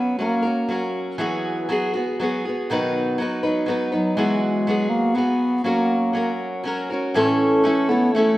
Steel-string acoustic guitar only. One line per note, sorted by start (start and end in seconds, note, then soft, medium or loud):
0.00 0.18 F#3 medium
0.00 0.19 C#4 medium
0.00 0.20 F#4 medium
0.00 0.20 B4 medium
0.19 0.44 F#3 medium
0.19 0.45 C#4 soft
0.19 0.44 F#4 medium
0.19 0.41 A#4 medium
0.42 0.70 F#4 soft
0.42 0.68 A#4 soft
0.47 0.69 C#4 soft
0.68 1.18 F#3 soft
0.68 1.19 C#4 medium
0.68 1.20 F#4 medium
0.68 1.20 A#4 medium
1.18 1.68 E3 medium
1.18 1.68 F#3 medium
1.18 1.69 B3 medium
1.18 1.70 F#4 medium
1.18 1.70 G#4 medium
1.69 1.94 F#3 medium
1.69 1.94 B3 medium
1.69 1.94 F#4 medium
1.69 1.92 G#4 medium
1.93 2.20 B3 soft
1.93 2.19 F#4 soft
1.93 2.18 G#4 medium
2.20 2.44 F#3 medium
2.20 2.45 B3 medium
2.20 2.45 F#4 medium
2.20 2.44 G#4 medium
2.45 2.70 B3 soft
2.45 2.70 F#4 soft
2.45 2.69 G#4 soft
2.70 3.19 B2 medium
2.70 3.19 D#3 medium
2.70 3.18 F#3 medium
2.70 3.20 B3 medium
2.70 3.20 D#4 medium
2.70 3.22 B4 medium
3.18 3.43 F#3 medium
3.18 3.44 B3 medium
3.18 3.43 D#4 medium
3.22 3.42 B4 medium
3.43 3.65 F#3 soft
3.43 3.67 B3 soft
3.43 3.68 D#4 soft
3.43 3.68 B4 medium
3.66 3.92 F#3 medium
3.66 3.92 B3 medium
3.66 3.91 D#4 medium
3.66 3.91 B4 medium
3.92 4.16 F#3 soft
3.92 4.17 B3 soft
3.92 4.17 D#4 soft
3.92 4.17 B4 soft
4.17 4.67 E3 medium
4.17 4.67 F#3 medium
4.17 4.67 B3 medium
4.17 4.69 F#4 medium
4.17 4.68 G#4 medium
4.67 5.13 F#3 medium
4.67 5.15 B3 medium
4.67 5.16 F#4 medium
4.67 5.17 G#4 medium
5.15 5.63 F#3 medium
5.15 5.65 B3 medium
5.15 5.65 F#4 medium
5.15 5.67 G#4 medium
5.64 6.12 F#3 medium
5.64 6.14 C#4 medium
5.64 6.14 F#4 medium
5.64 6.15 A#4 medium
6.13 6.62 F#3 medium
6.13 6.64 C#4 medium
6.13 6.65 F#4 medium
6.13 6.66 A#4 medium
6.64 6.89 F#3 medium
6.64 6.90 C#4 medium
6.64 6.91 F#4 medium
6.64 6.89 A#4 medium
6.90 7.15 C#4 soft
6.90 7.16 F#4 soft
6.90 7.15 A#4 soft
7.14 7.64 A2 medium
7.14 8.38 E3 medium
7.14 7.62 A3 medium
7.14 7.64 C#4 medium
7.14 7.66 E4 medium
7.14 7.65 A4 medium
7.64 7.88 A3 medium
7.64 7.89 C#4 medium
7.64 7.89 E4 medium
7.64 7.87 A4 medium
7.89 8.13 A3 soft
7.89 8.15 C#4 soft
7.89 8.14 E4 soft
7.89 8.13 A4 soft
8.15 8.38 A3 medium
8.15 8.38 C#4 medium
8.15 8.38 E4 medium
8.15 8.38 A4 medium